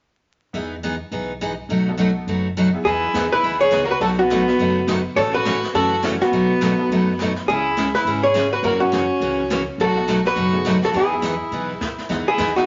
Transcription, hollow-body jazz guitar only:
2.85 3.33 G#4 medium
3.32 3.59 B4 loud
3.61 3.85 C#5 loud
3.85 3.90 A#4 medium
3.91 4.01 B4 medium
4.01 4.06 A4 medium
4.19 5.01 F#4 medium
5.16 5.21 C#5 loud
5.34 5.75 B4 loud
5.75 6.02 A4 medium
6.22 7.33 F#4 medium
7.48 7.95 G#4 medium
7.95 8.23 B4 medium
8.23 8.52 C#5 loud
8.53 8.64 B4 medium
8.65 8.82 A#4 medium
8.80 9.63 F#4 medium
9.81 10.23 A4 medium
10.27 10.80 B4 medium
10.85 10.96 A4 medium
10.97 11.95 G#4 medium
12.28 12.54 G#4 medium
12.56 12.66 F#4 medium

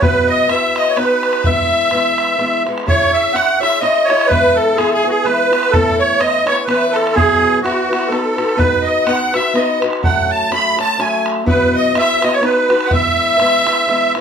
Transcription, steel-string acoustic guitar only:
0.01 0.49 B2 medium
0.01 0.49 F#3 medium
0.01 0.48 B3 medium
0.01 0.49 E4 medium
0.01 0.49 F#4 medium
0.01 0.51 B4 medium
0.48 0.95 B3 soft
0.48 0.97 E4 soft
0.48 0.97 F#4 medium
0.48 0.98 B4 soft
0.96 1.44 B3 medium
0.96 1.45 D#4 medium
0.96 1.45 F#4 medium
0.96 1.46 B4 medium
1.44 1.91 E3 medium
1.44 1.92 G#3 medium
1.44 1.92 B3 medium
1.44 1.94 E4 medium
1.92 2.37 E3 medium
1.92 2.38 G#3 soft
1.92 2.39 B3 soft
1.92 2.40 E4 soft
2.38 2.66 E3 medium
2.38 2.66 G#3 medium
2.38 2.66 B3 medium
2.38 2.65 E4 medium
2.66 2.87 G#3 medium
2.66 2.87 B3 soft
2.66 2.86 E4 medium
2.86 3.33 C#4 medium
2.86 3.35 E4 medium
2.86 3.35 G#4 medium
2.86 3.35 C#5 medium
3.34 3.61 C#4 soft
3.34 3.61 E4 soft
3.34 3.61 G#4 soft
3.34 3.59 C#5 soft
3.60 3.82 E4 soft
3.60 3.82 G#4 soft
3.60 3.82 C#5 medium
3.82 4.09 C#4 medium
3.82 4.09 E4 medium
3.82 4.08 G#4 medium
3.82 4.07 C#5 medium
4.08 4.29 E4 soft
4.08 4.30 G#4 soft
4.08 4.30 C#5 soft
4.29 4.77 E3 medium
4.29 4.77 G#3 medium
4.29 4.78 B3 medium
4.29 4.79 E4 medium
4.77 5.04 E3 medium
4.77 5.05 G#3 soft
4.77 5.04 B3 medium
4.77 5.03 E4 medium
5.04 5.25 G#3 soft
5.04 5.25 B3 soft
5.04 5.25 E4 medium
5.25 5.52 E3 medium
5.25 5.52 G#3 medium
5.25 5.51 B3 medium
5.25 5.50 E4 medium
5.51 5.73 G#3 soft
5.51 5.72 B3 medium
5.51 5.72 E4 medium
5.72 6.20 A2 medium
5.72 6.18 E3 medium
5.72 6.20 B3 medium
5.72 6.20 C#4 medium
5.72 6.21 E4 medium
6.19 6.47 E3 soft
6.19 6.47 B3 soft
6.19 6.45 C#4 medium
6.45 6.67 B3 soft
6.45 6.68 C#4 medium
6.45 6.67 E4 soft
6.67 7.15 E3 medium
6.67 7.16 B3 medium
6.67 7.16 C#4 medium
6.67 7.15 E4 medium
7.15 7.63 B2 medium
7.15 7.67 F#3 medium
7.15 7.62 B3 medium
7.15 7.62 E4 medium
7.15 7.64 F#4 medium
7.15 7.64 B4 medium
7.62 7.90 B3 medium
7.62 7.90 E4 soft
7.62 7.89 F#4 medium
7.62 7.88 B4 medium
7.89 8.08 B3 soft
7.89 8.11 E4 soft
7.89 8.10 F#4 soft
7.89 8.11 B4 soft
8.10 8.38 B3 medium
8.10 8.38 D#4 medium
8.10 8.37 F#4 medium
8.10 8.35 B4 medium
8.37 8.56 D#4 soft
8.37 8.57 F#4 soft
8.37 8.58 B4 soft
8.57 9.05 B3 medium
8.57 9.06 D#4 medium
8.57 9.08 F#4 medium
8.57 9.07 B4 medium
9.06 9.34 B3 soft
9.06 9.34 D#4 soft
9.06 9.33 F#4 soft
9.06 9.32 B4 medium
9.34 9.54 D#4 soft
9.34 9.55 F#4 soft
9.34 9.55 B4 medium
9.54 9.81 B3 medium
9.54 9.82 D#4 medium
9.54 9.81 F#4 medium
9.54 9.80 B4 medium
9.81 10.03 D#4 soft
9.81 10.04 F#4 soft
9.81 10.03 B4 medium
10.03 10.50 F#3 medium
10.03 10.51 A3 medium
10.03 10.51 C#4 medium
10.03 10.52 A4 medium
10.51 10.78 F#3 medium
10.51 10.77 A3 soft
10.51 10.79 C#4 medium
10.51 10.76 A4 medium
10.77 10.98 A3 soft
10.77 10.98 C#4 soft
10.77 10.99 A4 medium
10.98 11.45 F#3 medium
10.98 11.47 A3 medium
10.98 11.46 C#4 medium
10.98 11.47 A4 medium
11.46 11.95 B2 medium
11.46 11.95 F#3 medium
11.46 11.93 B3 medium
11.46 11.94 E4 medium
11.46 11.94 F#4 medium
11.46 11.96 B4 medium
11.94 12.22 B3 medium
11.94 12.22 E4 medium
11.94 12.21 F#4 medium
11.94 12.20 B4 medium
12.21 12.40 B3 soft
12.21 12.42 E4 soft
12.21 12.42 F#4 soft
12.21 12.43 B4 soft
12.41 12.69 B3 medium
12.41 12.70 D#4 medium
12.41 12.69 F#4 medium
12.41 12.67 B4 medium
12.69 12.90 D#4 soft
12.69 12.90 F#4 medium
12.69 12.91 B4 medium
12.90 13.38 E3 medium
12.90 13.39 G#3 medium
12.90 13.40 B3 medium
12.90 13.41 E4 medium
13.38 13.66 E3 soft
13.38 13.67 G#3 soft
13.38 13.66 B3 soft
13.38 13.65 E4 medium
13.66 13.86 G#3 soft
13.66 13.88 B3 soft
13.66 13.88 E4 medium
13.87 14.15 E3 medium
13.87 14.15 G#3 medium
13.87 14.16 B3 medium
13.87 14.14 E4 medium
14.15 14.21 G#3 soft
14.15 14.21 B3 soft
14.15 14.21 E4 medium

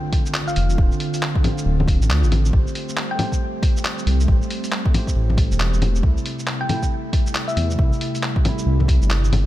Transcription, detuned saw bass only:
0.57 0.77 F1 loud
0.78 0.91 D1 medium
1.66 1.99 D1 medium
2.01 2.11 A1 loud
2.09 2.24 D2 medium
2.23 2.30 A1 loud
2.31 2.52 A1 medium
2.53 2.66 A1 medium
4.06 4.27 C2 loud
4.28 4.41 A1 medium
5.16 5.50 A1 loud
5.51 5.59 E1 loud
5.59 5.72 E1 medium
5.73 5.81 E1 loud
5.82 6.02 E1 medium
6.03 6.16 C2 medium
7.57 7.77 E2 loud
7.79 7.91 C2 medium
8.66 9.00 C2 medium
9.01 9.10 G1 loud
9.10 9.23 G1 medium
9.24 9.31 G1 loud
9.32 9.46 G1 medium

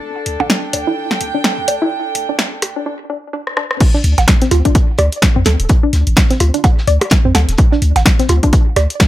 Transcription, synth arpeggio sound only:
0.40 0.42 D4 medium
0.73 0.80 D5 medium
0.87 0.89 E4 medium
1.34 1.36 D4 medium
1.68 1.74 D5 medium
1.82 1.84 E4 loud
2.29 2.31 D4 medium
2.76 2.78 D4 medium
2.86 2.89 D4 medium
3.10 3.12 D4 medium
3.33 3.36 D4 medium
3.57 3.59 D4 medium
3.94 3.99 D4 medium
4.42 4.44 C4 medium
4.51 4.56 F4 medium
4.65 4.70 D4 medium
4.99 5.03 D5 medium
5.36 5.38 C4 medium
5.46 5.52 A4 medium
5.83 5.88 D4 medium
6.31 6.33 C4 medium
6.40 6.45 F4 medium
6.54 6.59 D4 medium
6.88 6.92 D5 medium
7.25 7.27 C4 medium
7.35 7.41 A4 medium
7.72 7.77 D4 medium
8.20 8.22 C4 medium
8.29 8.34 F4 medium
8.43 8.48 D4 medium
8.76 8.81 D5 medium

